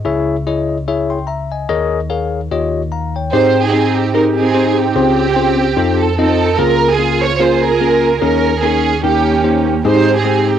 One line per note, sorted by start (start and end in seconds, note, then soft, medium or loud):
0.05 1.65 C#2 medium
0.05 1.65 C#3 medium
0.05 0.35 E4 loud
0.05 0.35 G#4 medium
0.05 0.35 C#5 loud
0.05 0.36 E5 loud
0.47 0.77 E4 medium
0.47 0.77 G#4 medium
0.47 0.77 C#5 medium
0.47 0.77 D#5 medium
0.88 1.18 E4 medium
0.88 1.18 G#4 medium
0.88 1.18 C#5 medium
0.88 1.11 E5 medium
1.10 1.28 G5 medium
1.10 1.27 C6 medium
1.27 1.50 E5 medium
1.27 1.50 A#5 medium
1.52 1.68 D#5 medium
1.52 1.90 G#5 medium
1.69 2.47 D#2 medium
1.69 2.47 D#3 medium
1.69 1.99 G#4 loud
1.69 1.99 A#4 medium
1.69 1.99 C#5 loud
1.69 1.99 D#5 loud
2.10 2.40 G#4 medium
2.10 2.40 A#4 medium
2.10 2.40 C#5 medium
2.10 2.40 F5 medium
2.51 3.29 D#2 medium
2.51 3.29 D#3 medium
2.51 2.81 F4 medium
2.51 2.81 G4 medium
2.51 2.81 C#5 medium
2.51 2.81 D#5 medium
2.92 3.14 F5 medium
2.92 3.14 A#5 medium
3.16 3.55 C#5 medium
3.16 3.54 G5 medium
3.33 4.92 G#2 medium
3.33 3.63 C4 loud
3.33 3.63 D#4 medium
3.33 3.64 D#4 medium
3.33 3.63 G4 medium
3.33 3.95 G4 medium
3.33 3.63 G#4 medium
3.33 3.63 C5 loud
3.65 4.36 C4 medium
3.65 4.14 D#4 medium
3.65 3.95 G#4 medium
3.73 4.04 C4 medium
3.73 4.03 D#4 medium
3.73 4.03 G4 medium
3.73 4.03 G#4 medium
3.73 4.04 C5 medium
3.97 4.14 G4 medium
4.14 4.44 C4 medium
4.14 4.45 D#4 medium
4.14 4.36 D#4 medium
4.14 4.45 G4 medium
4.14 4.77 G4 medium
4.14 4.44 G#4 medium
4.14 4.25 A#4 medium
4.14 4.45 A#4 medium
4.37 4.77 C4 medium
4.37 4.92 D#4 medium
4.37 4.75 G#4 loud
4.54 4.85 C4 medium
4.54 4.85 D#4 medium
4.54 4.85 G4 medium
4.54 4.85 G#4 medium
4.54 4.85 C5 medium
4.78 5.97 C4 medium
4.78 6.00 G4 loud
4.95 5.73 C#2 medium
4.95 5.73 C#3 medium
4.95 5.26 C4 loud
4.95 5.26 C#4 medium
4.95 5.26 F4 medium
4.95 5.26 G#4 medium
4.95 5.26 C5 loud
5.36 5.67 C4 medium
5.36 5.67 C#4 medium
5.36 5.67 F4 medium
5.36 5.67 G#4 medium
5.36 5.67 C5 medium
5.77 6.55 F2 medium
5.77 6.07 C4 medium
5.77 6.07 D#4 medium
5.77 6.07 F4 medium
5.77 6.07 A4 medium
5.77 6.07 C5 loud
6.01 6.18 A4 medium
6.19 6.49 C4 medium
6.19 6.57 C4 medium
6.19 6.49 D#4 medium
6.19 6.57 D#4 medium
6.19 6.49 F4 medium
6.19 6.57 A4 loud
6.19 6.49 A4 medium
6.19 6.49 D#5 medium
6.58 8.18 C#2 medium
6.58 8.18 C#3 medium
6.58 6.89 A#3 loud
6.58 6.89 C#4 medium
6.58 6.89 F4 medium
6.58 6.90 F4 medium
6.58 6.89 G#4 medium
6.58 6.91 A#4 loud
6.58 6.89 A#4 loud
6.91 7.38 F4 medium
6.91 7.23 G#4 loud
6.99 7.29 A#3 medium
6.99 7.30 C#4 medium
6.99 7.29 F4 medium
6.99 7.30 G#4 medium
6.99 7.30 A#4 medium
7.22 7.40 C#5 loud
7.39 7.70 A#3 medium
7.39 7.70 C#4 medium
7.39 7.70 F4 medium
7.39 7.62 F4 medium
7.39 7.70 G#4 medium
7.39 8.18 G#4 medium
7.39 7.70 A#4 medium
7.39 7.63 C5 loud
7.63 8.18 F4 medium
7.63 8.20 A#4 loud
7.80 8.11 A#3 medium
7.80 8.11 C#4 medium
7.80 8.11 F4 medium
7.80 8.11 G#4 medium
7.80 8.11 A#4 medium
8.21 8.99 D#2 medium
8.21 8.99 D#3 medium
8.21 8.52 A#3 medium
8.21 8.52 C#4 medium
8.21 8.62 C#4 medium
8.21 8.52 D#4 medium
8.21 8.52 G#4 medium
8.21 8.59 A#4 loud
8.21 8.52 A#4 loud
8.63 8.93 A#3 medium
8.63 8.93 C#4 medium
8.63 9.01 C#4 medium
8.63 8.93 D#4 medium
8.63 9.04 G#4 loud
8.63 8.93 G#4 medium
8.63 8.93 A#4 medium
9.03 9.81 D#2 medium
9.03 9.81 D#3 medium
9.03 9.34 A#3 medium
9.03 9.81 A#3 medium
9.03 9.81 C#4 medium
9.03 9.34 C#4 medium
9.03 9.34 D#4 medium
9.03 9.63 G4 loud
9.03 9.34 G4 medium
9.03 9.34 A#4 medium
9.44 9.74 A#3 medium
9.44 9.74 C#4 medium
9.44 9.74 D#4 medium
9.44 9.74 G4 medium
9.44 9.74 C5 medium
9.85 10.59 G#2 medium
9.85 10.15 G#3 loud
9.85 10.15 C4 medium
9.85 10.15 D#4 medium
9.85 10.18 D#4 medium
9.85 10.15 G4 medium
9.85 10.49 G4 medium
9.85 10.15 G#4 loud
9.85 10.15 C5 loud
10.19 10.59 C4 medium
10.19 10.59 D#4 medium
10.19 10.50 G#4 loud
10.25 10.55 G#3 medium
10.25 10.55 C4 medium
10.25 10.55 D#4 medium
10.25 10.55 G4 medium
10.25 10.55 G#4 medium
10.50 10.59 G4 medium